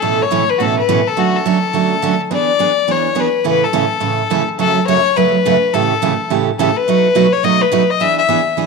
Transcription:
0.00 0.23 A2 medium
0.00 0.23 B2 soft
0.00 0.23 E3 medium
0.00 0.22 A3 medium
0.00 0.22 C#4 medium
0.00 0.24 A4 medium
0.00 0.23 A4 medium
0.22 0.51 C#5 medium
0.31 0.42 A2 medium
0.31 0.43 B2 medium
0.31 0.43 E3 medium
0.31 0.43 A3 medium
0.31 0.43 C#4 medium
0.31 0.43 A4 medium
0.50 0.60 B4 medium
0.58 0.80 A2 medium
0.58 0.80 B2 medium
0.58 0.80 E3 medium
0.58 0.80 A3 medium
0.58 0.80 C#4 medium
0.58 0.63 F#4 medium
0.58 0.80 A4 medium
0.58 0.78 A4 medium
0.79 1.09 B4 medium
0.89 1.00 A2 medium
0.89 1.00 B2 medium
0.89 1.00 E3 medium
0.89 1.00 A3 medium
0.89 1.00 C#4 medium
0.89 1.00 A4 medium
1.07 1.20 A4 medium
1.17 1.37 D3 medium
1.17 1.37 F#3 medium
1.17 1.37 A3 medium
1.17 1.37 C#4 medium
1.17 1.37 F#4 medium
1.17 1.38 F#4 medium
1.36 2.21 A4 medium
1.45 1.57 D3 medium
1.45 1.57 F#3 medium
1.45 1.57 A3 medium
1.45 1.57 C#4 medium
1.45 1.57 F#4 medium
1.73 1.93 D3 medium
1.73 1.94 F#3 medium
1.73 1.94 A3 medium
1.73 1.94 C#4 medium
1.73 1.94 F#4 medium
2.02 2.14 D3 medium
2.02 2.14 F#3 medium
2.02 2.14 A3 medium
2.02 2.14 C#4 medium
2.02 2.14 F#4 medium
2.31 2.51 E3 medium
2.31 2.51 B3 medium
2.31 2.51 D4 medium
2.31 2.51 G#4 medium
2.31 2.92 D5 loud
2.59 2.71 E3 medium
2.59 2.71 B3 medium
2.59 2.71 D4 medium
2.59 2.71 G#4 medium
2.88 3.08 E3 medium
2.88 3.08 B3 medium
2.88 3.08 D4 medium
2.88 3.08 G#4 medium
2.88 3.21 C#5 medium
3.15 3.27 E3 medium
3.15 3.27 B3 medium
3.15 3.27 D4 medium
3.15 3.27 G#4 medium
3.20 3.47 B4 medium
3.44 3.64 A2 medium
3.44 3.64 C#3 medium
3.44 3.65 E3 medium
3.44 3.65 A3 medium
3.44 3.65 C#4 medium
3.44 3.65 A4 medium
3.44 3.66 B4 loud
3.64 4.49 A4 medium
3.73 3.84 A2 medium
3.73 3.85 C#3 medium
3.73 3.84 E3 medium
3.73 3.84 A3 medium
3.73 3.85 C#4 medium
3.73 3.85 A4 medium
4.00 4.21 A2 medium
4.00 4.21 C#3 medium
4.00 4.21 E3 medium
4.00 4.21 A3 medium
4.00 4.21 C#4 medium
4.00 4.21 A4 medium
4.30 4.41 A2 medium
4.30 4.42 C#3 medium
4.30 4.42 E3 medium
4.30 4.42 A3 medium
4.30 4.42 C#4 medium
4.30 4.42 A4 medium
4.59 4.78 F#2 medium
4.59 4.78 C#3 medium
4.59 4.78 F#3 medium
4.59 4.79 A3 medium
4.59 4.79 C#4 medium
4.59 4.79 F#4 medium
4.59 4.86 A4 loud
4.87 4.99 F#2 medium
4.87 4.99 C#3 medium
4.87 4.99 F#3 medium
4.87 4.99 A3 medium
4.87 4.99 C#4 medium
4.87 4.99 F#4 medium
4.87 5.18 C#5 loud
5.16 5.35 F#2 medium
5.16 5.36 C#3 medium
5.16 5.36 F#3 medium
5.16 5.36 A3 medium
5.16 5.36 C#4 medium
5.16 5.36 F#4 medium
5.16 5.75 B4 loud
5.46 5.56 F#2 medium
5.46 5.56 C#3 medium
5.46 5.56 F#3 medium
5.46 5.56 A3 medium
5.46 5.56 C#4 medium
5.46 5.56 F#4 medium
5.74 5.93 A2 medium
5.74 5.93 C#3 medium
5.74 5.93 E3 medium
5.74 5.93 A3 medium
5.74 5.93 C#4 medium
5.74 5.93 G4 medium
5.74 6.30 A4 medium
6.02 6.12 A2 medium
6.02 6.13 C#3 medium
6.02 6.13 E3 medium
6.02 6.13 A3 medium
6.02 6.13 C#4 medium
6.02 6.13 G4 medium
6.30 6.49 A2 medium
6.30 6.49 C#3 medium
6.30 6.50 E3 medium
6.30 6.49 A3 medium
6.30 6.50 C#4 medium
6.30 6.50 G4 medium
6.59 6.70 A2 medium
6.59 6.69 C#3 medium
6.59 6.69 E3 medium
6.59 6.70 A3 medium
6.59 6.70 C#4 medium
6.59 6.70 G4 medium
6.59 6.78 A4 medium
6.76 7.34 B4 loud
6.88 7.06 B2 medium
6.88 7.06 F#3 medium
6.88 7.07 A3 medium
6.88 7.07 D#4 medium
6.88 7.07 F#4 medium
7.15 7.26 B2 medium
7.15 7.26 F#3 medium
7.15 7.26 A3 medium
7.15 7.26 D#4 medium
7.15 7.26 F#4 medium
7.32 7.46 C#5 medium
7.43 7.62 B2 medium
7.43 7.63 F#3 medium
7.43 7.63 A3 medium
7.43 7.63 D#4 medium
7.43 7.63 F#4 medium
7.43 7.63 D#5 loud
7.61 7.92 B4 medium
7.72 7.82 B2 medium
7.72 7.82 F#3 medium
7.72 7.83 A3 medium
7.72 7.83 D#4 medium
7.72 7.83 F#4 medium
7.90 8.03 D#5 loud
8.00 8.19 E3 medium
8.00 8.19 B3 medium
8.00 8.20 D4 medium
8.00 8.20 G#4 medium
8.00 8.18 E5 loud
8.19 8.55 E5 medium
8.28 8.39 E3 medium
8.28 8.39 B3 medium
8.28 8.40 D4 medium
8.28 8.40 G#4 medium
8.57 8.66 E3 medium
8.57 8.66 B3 medium
8.57 8.66 D4 medium
8.57 8.66 G#4 medium

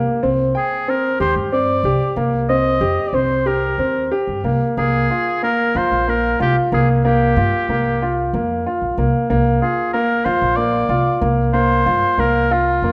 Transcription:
0.00 0.19 A#3 medium
0.23 0.54 C2 medium
0.23 0.51 C4 medium
0.55 0.91 G#4 medium
0.55 0.83 G5 medium
0.88 1.16 C4 medium
0.88 1.20 A#4 medium
1.20 1.35 D#2 medium
1.20 1.48 G4 medium
1.20 1.35 C5 medium
1.36 1.81 G2 medium
1.52 1.80 C4 medium
1.52 2.13 D5 medium
1.83 1.99 C2 medium
1.83 2.13 G4 medium
2.16 2.77 C2 medium
2.16 2.44 A#3 medium
2.49 2.77 C4 medium
2.49 3.09 D#5 medium
2.81 2.96 F2 medium
2.81 3.09 G4 medium
3.08 3.17 D5 soft
3.13 3.74 C2 medium
3.13 3.42 C4 medium
3.13 3.48 C5 medium
3.46 3.74 G4 medium
3.46 4.11 A#4 medium
3.78 4.09 D#2 medium
3.78 4.07 C4 soft
4.12 4.40 G4 medium
4.27 4.43 G2 medium
4.44 4.60 C2 medium
4.44 4.73 A#3 medium
4.77 5.08 C2 medium
4.77 5.06 A#3 medium
4.77 5.39 G#4 medium
5.10 5.38 F4 soft
5.43 5.71 A#3 medium
5.43 5.78 A#4 medium
5.75 5.90 F2 medium
5.75 6.03 F4 medium
5.75 6.11 C5 medium
5.92 6.37 A#1 medium
6.08 6.36 A#3 medium
6.08 6.41 A#4 medium
6.40 6.55 C2 medium
6.40 6.68 F4 medium
6.40 6.56 G4 medium
6.72 7.34 C2 medium
6.72 7.00 A#3 medium
6.72 6.88 G#4 medium
7.05 7.33 A#3 medium
7.05 8.31 G4 medium
7.36 7.52 G2 medium
7.36 7.65 F4 medium
7.69 8.30 C2 medium
7.69 7.98 A#3 medium
8.02 8.30 F4 medium
8.33 8.64 F2 medium
8.33 8.62 A#3 medium
8.66 8.94 F4 medium
8.81 8.97 A#1 medium
8.97 9.13 C2 medium
8.97 9.26 A#3 medium
9.30 9.60 C2 medium
9.30 9.58 A#3 medium
9.62 9.90 F4 medium
9.62 9.92 G#4 medium
9.93 10.22 A#3 medium
9.93 10.26 A#4 medium
10.25 10.41 F2 medium
10.25 10.54 F4 medium
10.25 10.58 C5 medium
10.41 10.87 A#1 medium
10.56 10.85 A#3 medium
10.56 11.21 D5 medium
10.89 11.05 C2 medium
10.89 11.18 F4 medium
11.21 11.83 C2 medium
11.21 11.50 A#3 medium
11.53 11.82 A#3 medium
11.53 12.21 C5 medium
11.86 12.02 G2 medium
11.86 12.14 F4 medium
12.18 12.79 C2 medium
12.18 12.47 A#3 medium
12.18 12.54 A#4 medium
12.51 12.79 F4 medium
12.51 12.92 F4 medium
12.82 12.92 F2 medium
12.82 12.92 A#3 medium

